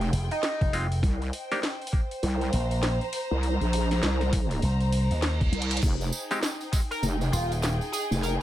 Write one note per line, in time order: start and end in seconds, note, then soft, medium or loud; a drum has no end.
0.00 0.11 F1 loud
0.00 0.27 G#3 medium
0.00 0.27 C4 medium
0.00 0.27 D#4 medium
0.00 0.27 G4 medium
0.00 1.03 G#4 medium
0.00 2.97 G5 medium
0.00 open hi-hat soft
0.13 0.28 F1 loud
0.13 open hi-hat medium
0.31 0.73 D#4 loud
0.31 open hi-hat soft
0.43 snare loud
0.43 open hi-hat soft
0.61 1.01 F1 loud
0.61 kick loud
0.61 open hi-hat soft
0.73 0.87 G#3 loud
0.73 0.87 C4 medium
0.73 0.87 D#4 medium
0.73 0.87 F4 loud
0.73 open hi-hat medium
0.92 open hi-hat soft
1.03 1.31 C2 medium
1.03 kick loud
1.03 open hi-hat soft
1.22 6.64 C5 loud
1.22 open hi-hat soft
1.33 open hi-hat medium
1.52 1.60 A#3 loud
1.52 1.60 D4 medium
1.52 1.60 D#4 medium
1.52 1.60 G4 loud
1.52 snare soft
1.52 open hi-hat soft
1.63 snare loud
1.63 open hi-hat soft
1.82 open hi-hat soft
1.87 open hi-hat medium
1.93 kick loud
2.11 open hi-hat soft
2.23 2.51 C2 loud
2.23 open hi-hat soft
2.33 6.68 A#5 medium
2.41 open hi-hat soft
2.53 2.98 A#1 loud
2.53 open hi-hat medium
2.71 open hi-hat soft
2.83 snare loud
2.83 open hi-hat soft
3.01 open hi-hat soft
3.13 open hi-hat medium
3.31 3.58 C2 loud
3.43 open hi-hat soft
3.61 4.01 A#1 loud
3.61 open hi-hat soft
3.73 open hi-hat medium
3.91 snare soft
3.91 open hi-hat soft
4.03 4.61 C2 loud
4.03 snare loud
4.03 open hi-hat soft
4.21 snare soft
4.21 open hi-hat soft
4.33 kick loud
4.33 open hi-hat medium
4.51 open hi-hat soft
4.62 5.08 C2 loud
4.62 open hi-hat soft
4.62 reverse cymbal medium
4.80 open hi-hat soft
4.92 open hi-hat medium
5.11 5.51 D#2 loud
5.11 open hi-hat soft
5.22 snare loud
5.22 open hi-hat soft
5.41 kick loud
5.41 open hi-hat soft
5.52 5.81 C2 loud
5.52 closed hi-hat medium
5.62 closed hi-hat medium
5.71 closed hi-hat medium
5.77 closed hi-hat medium
5.82 6.11 F1 loud
5.82 8.42 D#4 medium
5.82 kick loud
5.82 open hi-hat soft
5.82 crash medium
5.82 tambourine soft
5.99 8.42 G#4 medium
5.99 8.42 G5 medium
5.99 open hi-hat soft
5.99 tambourine soft
6.13 tambourine medium
6.31 6.40 G#3 loud
6.31 6.40 C4 medium
6.31 6.40 D#4 medium
6.31 6.40 G4 loud
6.31 snare soft
6.31 open hi-hat soft
6.31 tambourine soft
6.43 snare loud
6.43 open hi-hat soft
6.43 tambourine soft
6.61 open hi-hat soft
6.61 tambourine soft
6.73 kick loud
6.73 open hi-hat medium
6.73 tambourine medium
6.91 7.04 A#4 medium
6.91 open hi-hat soft
6.91 tambourine soft
7.02 7.31 F1 loud
7.02 open hi-hat soft
7.02 tambourine medium
7.21 open hi-hat soft
7.21 tambourine soft
7.32 7.78 D#1 loud
7.32 7.52 F4 loud
7.32 open hi-hat medium
7.32 tambourine medium
7.52 open hi-hat soft
7.52 tambourine soft
7.62 snare loud
7.62 open hi-hat soft
7.62 tambourine medium
7.81 open hi-hat soft
7.81 tambourine soft
7.92 8.12 G#4 loud
7.92 open hi-hat medium
7.92 tambourine loud
8.11 8.38 F1 loud
8.11 open hi-hat soft
8.11 tambourine soft
8.22 8.34 A#4 medium
8.22 open hi-hat soft
8.22 tambourine soft